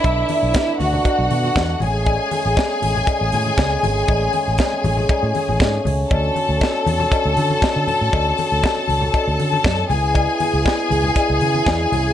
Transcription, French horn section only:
\new Staff \with { instrumentName = "French horn section" } { \time 4/4 \key a \major \tempo 4 = 119 << { <a d'>2.~ <a d'>8 <gis cis'>8~ | <gis cis'>1~ | <gis cis'>1 | <d fis'>1~ |
<d fis'>2.~ <d fis'>8 <cis e'>8~ | <cis e'>1 | } \\ { b2.~ b8 r8 | r1 | r1 | r1 |
r2. r8 b8~ | b2.~ b8 cis'8 | } >> }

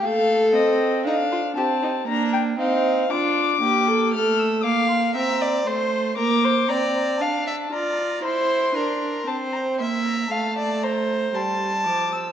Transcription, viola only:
\new Staff \with { instrumentName = "Viola" } { \time 4/4 \key bes \major \tempo 4 = 58 a8 c'8 d'8 c'8 bes8 c'8 d'8 bes8 | a8 bes8 c'8 a8 bes8 c'8 d'8 f'8 | e'8 d'8 c'8 bes8 a4 g8 f8 | }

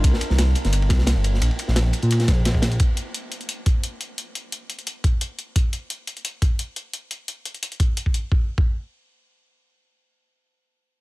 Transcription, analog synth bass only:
\new Staff \with { instrumentName = "Analog synth bass" } { \clef bass \time 4/4 \key des \lydian \tempo 4 = 174 c,16 r8 c,8. r16 g,,8. c,8. g,,8. | bes,,16 r8 bes,,8. r16 bes,8. bes,,8. bes,,8. | r1 | r1 |
r1 | r1 | r1 | r1 | }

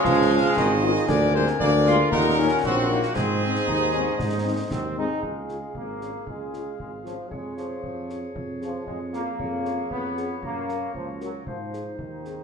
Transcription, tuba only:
\new Staff \with { instrumentName = "Tuba" } { \clef bass \time 2/4 \key des \major \tempo 4 = 116 des,4 aes,,4 | d,4 d,4 | ees,4 bes,,4 | aes,4 ees,4 |
aes,4 ees,4 | des,4 aes,,4 | des,4 aes,,4 | f,4 f,4 |
f,4 f,4 | f,4 f,4 | ges,4 des,4 | aes,4 ees,4 | }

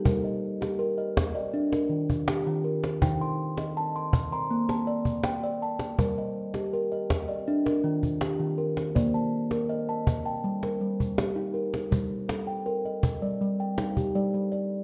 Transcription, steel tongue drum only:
<<
  \new Staff \with { instrumentName = "Steel tongue drum" } { \time 4/4 \key g \minor \tempo 4 = 81 << { bes'16 ees''8 g'8 ees''8 d''8 bes'8. g'8 bes'8 | g''16 c'''8 ees''8 c'''8 bes''8 a''8. g''8 a''8 | bes'16 ees''8 g'8 ees''8 d''8 bes'8. g'8 bes'8 | d''16 a''8 bes'8 a''8 g''8 bes'8. g'8 bes'8~ |
bes'16 r16 a'16 g''8 ees''8 d''8 g''8 g'16 d''8 d''8 | } \\ { <g ees'>8 r8 bes'8 r16 ees''8 r16 ees8 r16 ees8 r16 | ees'8 r8 a''8 r16 c'''8 r16 d''8 r16 d''8 r16 | g8 r8 bes'8 r16 ees''8 r16 ees8 r16 ees8 r16 | r4 ees''8 r16 a''16 r8 g8 r16 ees'8 r16 |
g8 r8 bes'8 r16 g8 r16 ees'8 r16 g8 r16 | } >> }
  \new Staff \with { instrumentName = "Steel tongue drum" } { \clef bass \time 4/4 \key g \minor r2 d'2 | ees2 bes2 | r2 d'2 | bes2 g2 |
r2 g4 g4 | }
>>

